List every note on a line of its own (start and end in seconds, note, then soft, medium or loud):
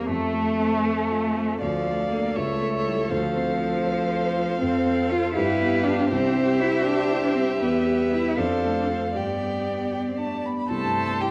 0.00 0.12 E2 soft
0.00 0.12 G3 soft
0.00 0.11 C4 soft
0.00 0.11 G4 soft
0.07 1.56 F2 soft
0.07 1.59 A3 medium
0.07 1.58 A3 medium
0.34 0.74 A3 soft
0.60 1.00 C4 soft
0.84 1.25 A4 soft
1.11 1.50 F4 soft
1.36 1.61 C4 soft
1.59 2.34 D2 soft
1.59 2.09 F3 medium
1.59 4.56 A4 soft
1.59 2.38 D5 soft
1.59 2.38 F5 soft
1.87 2.26 A3 soft
2.10 2.38 A#3 medium
2.10 2.34 D4 soft
2.10 2.34 A4 soft
2.36 3.09 C#2 soft
2.36 2.88 A3 medium
2.36 3.12 C#5 soft
2.36 3.11 E5 soft
2.62 3.01 A3 soft
2.87 3.10 G3 medium
2.87 3.09 E4 soft
2.87 3.09 A4 soft
3.11 4.57 D2 soft
3.11 4.57 F3 medium
3.11 5.34 C5 medium
3.11 6.13 F5 soft
3.36 3.76 C4 soft
3.61 4.00 F4 soft
3.86 4.26 C5 soft
4.12 4.51 A4 soft
4.37 4.61 F4 soft
4.59 5.34 F2 soft
4.59 5.11 C4 medium
4.59 5.37 A4 medium
4.86 5.26 C4 soft
5.10 5.33 F4 medium
5.10 5.33 F4 soft
5.10 5.33 A4 soft
5.34 6.08 G2 medium
5.34 5.85 E4 medium
5.34 8.38 G4 medium
5.34 6.08 B4 medium
5.61 6.01 B3 soft
5.83 6.09 D4 medium
5.83 6.09 F4 soft
5.83 6.09 G4 soft
6.09 7.57 C2 medium
6.09 6.62 C4 medium
6.09 7.57 C5 medium
6.09 8.37 E5 medium
6.37 6.76 G3 soft
6.60 6.84 E4 medium
6.60 7.01 E4 soft
6.85 7.34 D4 medium
6.85 7.26 G4 medium
7.11 7.51 E4 soft
7.35 7.61 G3 soft
7.35 7.43 C4 medium
7.61 8.35 E2 medium
7.61 8.14 B3 medium
7.61 8.40 B4 medium
7.87 8.27 G3 soft
8.12 8.35 E4 soft
8.12 8.39 E4 medium
8.12 8.35 G4 soft
8.37 9.13 F2 medium
8.37 8.88 D4 medium
8.37 9.16 A4 medium
8.37 9.15 C5 soft
8.37 9.18 F5 soft
8.64 9.05 A3 soft
8.89 8.97 C4 medium
8.89 9.13 C4 soft
8.89 9.13 F4 soft
9.15 10.67 G2 soft
9.15 10.10 B3 medium
9.15 10.50 G4 soft
9.15 10.48 D5 soft
9.15 9.89 G5 soft
9.42 9.83 G3 soft
9.68 10.09 B3 soft
9.93 10.35 G4 soft
9.93 10.01 G5 soft
10.08 10.19 C4 soft
10.18 10.27 B3 soft
10.18 10.60 D4 soft
10.18 10.47 A5 soft
10.26 10.38 A3 soft
10.36 10.45 B3 soft
10.44 10.70 B3 soft
10.44 10.70 B5 soft
10.69 11.31 C2 soft
10.69 11.23 A3 medium
10.69 11.22 A4 medium
10.69 11.31 C5 medium
10.69 11.23 A5 medium
10.83 11.03 G2 soft
10.96 11.16 G3 soft
11.08 11.29 C4 soft
11.21 11.31 G3 soft
11.21 11.31 E4 soft
11.21 11.31 G4 soft
11.21 11.31 G5 medium